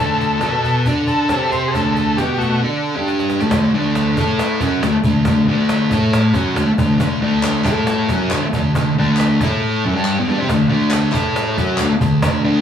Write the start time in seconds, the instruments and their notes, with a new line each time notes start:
Already playing: transistor combo organ A4
0.00 distorted electric guitar D3 A3 D4
0.21 cajon bass
0.41 distorted electric guitar B3 F#4 B4, cajon bass, cajon slap
0.64 cajon bass
0.85 distorted electric guitar D4 A4 D5, cajon bass
1.07 transistor combo organ A4, cajon bass
1.29 distorted electric guitar C4 G4 C5, cajon bass, cajon slap
1.52 transistor combo organ C5, cajon bass
1.68 transistor combo organ G#4 A4
1.74 distorted electric guitar D3 A3 D4, cajon bass
1.95 transistor combo organ A4, cajon bass
2.17 distorted electric guitar B3 F#4 B4, transistor combo organ G4, cajon bass, cajon slap
2.38 transistor combo organ A3 F#4, cajon bass
2.63 distorted electric guitar D4 A4 D5
2.96 distorted electric guitar G3 D4 G4
3.08 cajon slap
3.19 cajon slap
3.30 cajon slap
3.40 distorted electric guitar D3 A3, cajon slap
3.51 distorted electric guitar D3 A3, cajon bass, cajon slap
3.74 distorted electric guitar D3 A3 D4
3.95 cajon slap
4.17 distorted electric guitar A3 E4 A4, cajon bass
4.39 cajon slap
4.60 distorted electric guitar F#3 C#4 F#4, cajon bass
4.82 distorted electric guitar D3 A3, cajon slap
4.94 muted distorted electric guitar stroke
5.04 distorted electric guitar D3 A3, cajon bass
5.25 distorted electric guitar D3 A3, cajon bass, cajon slap
5.48 distorted electric guitar D3 A3 D4
5.69 cajon slap
5.91 distorted electric guitar A3 E4 A4, cajon bass
6.13 cajon slap
6.34 distorted electric guitar F#3 C#4 F#4, cajon bass
6.56 distorted electric guitar D3 A3, cajon slap
6.67 muted distorted electric guitar stroke
6.78 distorted electric guitar D3 A3, cajon bass
7.00 distorted electric guitar D3 A3, cajon bass, cajon slap
7.22 distorted electric guitar D3 A3 D4
7.43 cajon slap, clap
7.65 distorted electric guitar A3 E4 A4, cajon bass, clap
7.87 cajon slap
8.09 distorted electric guitar F#3 C#4 F#4, cajon bass
8.31 distorted electric guitar D3 A3, cajon slap, clap
8.43 muted distorted electric guitar stroke
8.53 distorted electric guitar D3 A3, cajon bass
8.75 distorted electric guitar D3 A3, cajon bass, cajon slap
8.98 distorted electric guitar D3 A3 D4
9.17 cajon slap, clap
9.41 distorted electric guitar A3 E4 A4, cajon bass
9.85 distorted electric guitar F#3 C#4
9.95 distorted electric guitar G3 D4 G4
10.05 clap
10.18 distorted electric guitar E3 B3
10.28 distorted electric guitar G3 D4
10.39 distorted electric guitar C4 G4
10.48 distorted electric guitar D3 A3, cajon bass, cajon slap
10.70 distorted electric guitar D3 A3 D4
10.91 cajon slap, clap
11.12 distorted electric guitar A3 E4 A4, cajon bass, clap
11.36 cajon slap
11.58 distorted electric guitar F#3 C#4 F#4, cajon bass
11.78 distorted electric guitar D3 A3, cajon slap, clap
11.91 muted distorted electric guitar stroke
12.01 distorted electric guitar D3 A3, cajon bass
12.22 distorted electric guitar D3 A3, cajon bass, cajon slap
12.45 distorted electric guitar D3 A3 D4